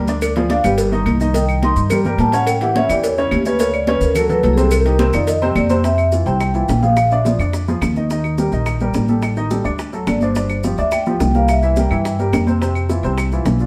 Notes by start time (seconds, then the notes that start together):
Already playing: D2
0.08 D3 D4 D5, cowbell, high conga, maracas
0.22 D5, cowbell, high conga, claves, maracas
0.36 F3 F4 G#4, cowbell, maracas
0.50 D3 D4 D5 F5, cowbell, high conga, maracas
0.64 G1 G3 G4 B4, cowbell, claves, maracas
0.78 cowbell, high conga, maracas
0.92 D#3 D#4 D#5, high conga, maracas
1.06 C2, cowbell, high conga, claves, maracas
1.20 D#3 D#4 D#5, high conga, maracas
1.34 D#3 D#4 D#5 G5, cowbell, high conga, maracas
1.49 high conga, claves, maracas
1.63 D#3 D#4 D#5 C6, cowbell, high conga, maracas
1.76 G2, high conga, maracas
1.90 G3 G4 A#4, cowbell, high conga, low conga, claves, maracas
2.05 G3 G4 A#4, high conga, low conga, maracas
2.18 A2 G3 G4 A#4 A5, cowbell, high conga, maracas
2.32 C#3 C#4 C#5 F#5, cowbell, maracas
2.47 G5, cowbell, high conga, claves, maracas
2.61 E3 E4 G4 F#5, cowbell, high conga, maracas
2.75 C#3 C#4 C#5 E5, cowbell, high conga, maracas
2.89 E2 E3 E4 G4 D5, cowbell, claves, maracas
3.04 C#5, cowbell, high conga, maracas
3.17 C#3 C#4 E4 C#5, high conga, maracas
3.31 D2 G4, cowbell, high conga, claves, maracas
3.45 C#3 C#4 B4 C#5, high conga, maracas
3.59 C#3 C#4 C#5, cowbell, high conga, maracas
3.73 D5, high conga, claves, maracas
3.87 C#3 C#4 B4 C#5, cowbell, high conga, maracas
4.01 D2 A#4, high conga, maracas
4.15 F#3 F#4 A4, cowbell, high conga, low conga, claves, maracas
4.29 F#3 F#4 A4 B4, high conga, low conga, maracas
4.43 C2 F#3 F#4 A4, cowbell, high conga, maracas
4.53 G#4, high conga, maracas
4.57 C3 C4 C5, cowbell
4.63 A4
4.71 A#4, cowbell, high conga, claves, maracas
4.85 D#3 D#4 G4, cowbell, high conga, maracas
4.99 C3 C4 C5, cowbell, high conga, maracas
5.13 F2 D#3 D#4 F4 D5, cowbell, claves, maracas
5.27 D#5, cowbell, high conga, maracas
5.41 C3 C4 C5, high conga, maracas
5.55 F2 D5, cowbell, high conga, claves, maracas
5.70 C3 C4 C5, high conga, maracas
5.84 C3 C4 C5 E5, high bongo, high conga, maracas
5.98 high bongo, high conga, claves, maracas
6.12 E3 E4 F4, high bongo, high conga, maracas
6.26 C2 C3 C4 C5 G5, high bongo, high conga, maracas
6.40 high bongo, high conga, claves, maracas
6.54 E3 E4 F4 G5, high bongo, high conga, maracas
6.68 A#1, high bongo, low bongo, high conga, maracas
6.83 F3 F4 G#4 F5, high conga, maracas
6.96 high bongo, claves, maracas
7.11 D3 D4 D5 E5, high bongo, high conga, maracas
7.25 F3 F4 G#4 D5, high bongo, high conga, maracas
7.39 F2 D3 D4 D5, high conga, claves, maracas
7.53 high bongo, high conga, maracas
7.68 F3 F4 G#4, high bongo, high conga, maracas
7.81 D#2, high bongo, low bongo, high conga, claves, maracas
7.96 D#3 D#4 D#5, high bongo, high conga, maracas
8.10 D#3 D#4 D#5, high bongo, high conga, maracas
8.24 high bongo, high conga, claves, maracas
8.38 G3 G4 A#4, high bongo, high conga, maracas
8.52 A#1 D#3 D#4 D#5, high bongo, maracas
8.66 high bongo, high conga, claves, maracas
8.80 G3 G4 A#4, high bongo, high conga, maracas
8.94 A1, high bongo, low bongo, high conga, maracas
9.08 G3 G4 A4, high conga, maracas
9.22 high bongo, high conga, claves, maracas
9.36 D#3 D#4 D#5, high bongo, maracas
9.51 G3 G4 A4, high bongo, high conga, maracas
9.64 D2 D3 D4 D5, high conga, claves, maracas
9.79 high bongo, high conga, maracas
9.93 F#3 F#4 A4, high bongo, high conga, maracas
10.07 G1 D5, high bongo, low bongo, high conga, claves, maracas
10.21 D3 D4 C5 D5, high bongo, high conga, maracas
10.35 D3 D4 D5, high bongo, high conga, maracas
10.49 high bongo, high conga, claves, maracas
10.63 F3 F4 G4, high bongo, high conga, maracas
10.78 D2 D3 D4 D5 E5, high bongo, high conga, maracas
10.91 G5, high bongo, high conga, claves, maracas
11.06 F3 F4 G4, high bongo, high conga, maracas
11.20 C2 G5, high bongo, low bongo, high conga, maracas
11.34 G3 G4 A#4 F5, high conga, maracas
11.48 E5, high bongo, high conga, claves, maracas
11.62 E3 E4 E5, high bongo, high conga, maracas
11.76 G3 G4 A#4 G5, high bongo, high conga, maracas
11.91 G2 E3 E4 E5, claves, maracas
12.05 high bongo, high conga, maracas
12.19 G3 G4 A#4, high bongo, high conga, maracas
12.33 F2, high bongo, low bongo, high conga, claves, maracas
12.47 C3 C4 C5, high bongo, high conga, maracas
12.61 C3 C4 C5, high bongo, maracas
12.75 high bongo, high conga, claves, maracas
12.89 E3 E4 F4, high bongo, high conga, maracas
13.03 C2 C3 C4 C5, high bongo, high conga, maracas
13.18 high bongo, high conga, claves, maracas
13.31 E3 E4 F4, high bongo, high conga, maracas
13.45 B1, high bongo, low bongo, high conga, maracas
13.59 D3 D4 F4, high conga, maracas